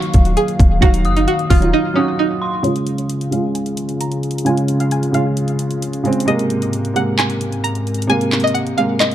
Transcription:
0.00 2.60 D#3 medium
0.00 0.81 F#3 loud
0.00 2.60 F#3 medium
0.00 2.60 A#3 medium
0.00 0.83 D#4 medium
0.00 1.64 F4 loud
0.00 0.34 F#4 medium
0.00 0.29 F5 medium
0.00 2.60 F5 medium
0.00 0.33 C#6 loud
0.00 closed hi-hat medium
0.14 0.36 D#1 loud
0.14 kick medium
0.14 closed hi-hat medium
0.25 closed hi-hat medium
0.37 0.80 G#4 medium
0.37 closed hi-hat medium
0.48 closed hi-hat soft
0.59 0.81 D#1 loud
0.59 kick loud
0.59 closed hi-hat medium
0.81 1.07 D#1 loud
0.81 1.34 F#3 loud
0.81 1.35 D#4 medium
0.81 1.14 F#4 loud
0.81 1.36 F5 loud
0.81 kick loud
0.81 closed hi-hat medium
0.94 closed hi-hat medium
1.05 1.27 F#1 loud
1.05 1.48 D#6 medium
1.05 closed hi-hat medium
1.17 1.27 D#4 medium
1.17 closed hi-hat medium
1.28 1.49 F#4 medium
1.28 closed hi-hat medium
1.39 closed hi-hat soft
1.50 1.73 D#1 loud
1.50 1.72 F4 medium
1.50 1.93 F6 medium
1.50 kick loud
1.50 open hi-hat medium
1.60 1.84 F#3 medium
1.60 1.84 D#4 medium
1.60 1.85 F4 medium
1.60 closed hi-hat medium
1.73 1.95 D#4 loud
1.94 2.40 F#3 medium
1.94 2.17 C#4 medium
1.94 2.41 D#4 medium
1.94 2.42 F#4 medium
1.94 2.39 D#6 medium
2.19 2.62 D#4 medium
2.42 2.63 C6 medium
2.63 3.08 C#3 medium
2.63 6.24 C#3 medium
2.63 3.09 G#3 medium
2.63 6.24 C#4 medium
2.63 6.24 F4 medium
2.63 3.10 F4 loud
2.63 6.24 G#4 medium
2.63 3.07 C#5 loud
2.63 closed hi-hat medium
2.76 closed hi-hat medium
2.87 closed hi-hat medium
2.98 closed hi-hat medium
3.10 closed hi-hat medium
3.21 closed hi-hat medium
3.31 3.92 C#3 medium
3.31 3.93 G#3 medium
3.31 3.94 F4 medium
3.31 3.54 F5 medium
3.31 closed hi-hat medium
3.55 3.98 G#5 medium
3.55 closed hi-hat medium
3.66 closed hi-hat medium
3.77 closed hi-hat medium
3.89 closed hi-hat soft
4.01 4.43 A#5 medium
4.01 closed hi-hat medium
4.12 closed hi-hat medium
4.23 closed hi-hat soft
4.31 closed hi-hat medium
4.38 closed hi-hat medium
4.45 4.90 C#3 loud
4.45 4.91 G#3 medium
4.45 4.92 F4 loud
4.45 4.78 G#5 loud
4.45 closed hi-hat medium
4.58 closed hi-hat medium
4.68 closed hi-hat medium
4.80 4.91 F5 medium
4.80 closed hi-hat medium
4.91 5.13 G#5 medium
4.91 closed hi-hat medium
5.03 closed hi-hat medium
5.12 5.73 C#3 medium
5.12 5.74 G#3 medium
5.12 5.75 F4 medium
5.12 6.24 F5 medium
5.12 closed hi-hat medium
5.37 closed hi-hat medium
5.48 closed hi-hat medium
5.59 closed hi-hat medium
5.71 closed hi-hat soft
5.82 closed hi-hat medium
5.93 closed hi-hat medium
6.03 6.19 C#3 medium
6.03 6.20 G#3 medium
6.03 6.21 C4 loud
6.03 closed hi-hat soft
6.13 closed hi-hat medium
6.20 closed hi-hat medium
6.26 9.15 G#2 medium
6.26 6.72 C3 loud
6.26 6.73 G#3 medium
6.26 9.15 G#3 medium
6.26 6.74 A#3 loud
6.26 9.15 C4 medium
6.26 9.15 A#4 medium
6.26 6.70 D#5 medium
6.26 closed hi-hat medium
6.39 closed hi-hat medium
6.50 closed hi-hat medium
6.62 closed hi-hat medium
6.73 closed hi-hat medium
6.85 closed hi-hat medium
6.94 7.55 C3 medium
6.94 7.56 G#3 medium
6.94 7.57 A#3 medium
6.94 7.17 F#5 medium
6.94 closed hi-hat medium
7.18 7.61 G#5 medium
7.18 clap loud
7.18 closed hi-hat medium
7.30 closed hi-hat medium
7.41 closed hi-hat medium
7.52 closed hi-hat medium
7.64 8.07 A#5 medium
7.64 closed hi-hat medium
7.75 closed hi-hat medium
7.87 closed hi-hat soft
7.94 closed hi-hat medium
8.02 closed hi-hat medium
8.07 8.53 C3 medium
8.07 8.54 G#3 medium
8.07 8.55 A#3 loud
8.07 8.42 G#5 loud
8.07 closed hi-hat medium
8.21 closed hi-hat medium
8.32 clap loud
8.32 closed hi-hat soft
8.40 8.54 D#5 medium
8.40 closed hi-hat medium
8.47 closed hi-hat medium
8.54 8.76 F#5 medium
8.54 closed hi-hat medium
8.67 closed hi-hat medium
8.77 9.15 C3 medium
8.77 9.15 G#3 medium
8.77 9.15 A#3 medium
8.77 8.99 F5 medium
8.77 closed hi-hat medium
9.00 9.15 D#5 medium
9.00 clap loud
9.00 closed hi-hat medium
9.11 closed hi-hat medium

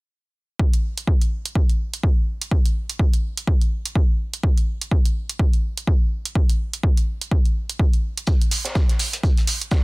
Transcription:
0.59 kick loud
0.73 closed hi-hat soft
0.97 closed hi-hat medium
1.07 kick medium
1.21 closed hi-hat soft
1.45 closed hi-hat medium
1.55 kick loud
1.70 closed hi-hat soft
1.94 closed hi-hat medium
2.03 kick medium
2.42 closed hi-hat medium
2.51 kick loud
2.66 closed hi-hat soft
2.90 closed hi-hat medium
2.99 kick loud
3.13 closed hi-hat soft
3.37 closed hi-hat medium
3.47 kick loud
3.61 closed hi-hat soft
3.85 closed hi-hat medium
3.95 kick medium
4.33 closed hi-hat medium
4.43 kick loud
4.58 closed hi-hat soft
4.81 closed hi-hat medium
4.91 kick loud
5.05 closed hi-hat soft
5.29 closed hi-hat medium
5.39 kick loud
5.53 closed hi-hat soft
5.77 closed hi-hat medium
5.87 kick loud
6.25 closed hi-hat medium
6.35 kick loud
6.49 closed hi-hat soft
6.73 closed hi-hat medium
6.83 kick loud
6.97 closed hi-hat soft
7.21 closed hi-hat medium
7.31 kick loud
7.45 closed hi-hat soft
7.69 closed hi-hat medium
7.79 kick loud
7.93 closed hi-hat soft
8.17 closed hi-hat medium
8.27 kick loud
8.27 shaker medium
8.41 closed hi-hat soft
8.51 open hi-hat loud
8.51 shaker medium
8.65 snare medium
8.65 closed hi-hat medium
8.75 kick loud
8.75 snare loud
8.75 shaker medium
8.89 snare soft
8.89 closed hi-hat soft
8.99 open hi-hat medium
8.99 shaker medium
9.13 closed hi-hat soft
9.13 closed hi-hat medium
9.23 kick loud
9.23 shaker medium
9.37 closed hi-hat soft
9.47 open hi-hat loud
9.47 shaker medium
9.61 closed hi-hat medium
9.71 kick loud
9.71 snare loud
9.71 shaker medium

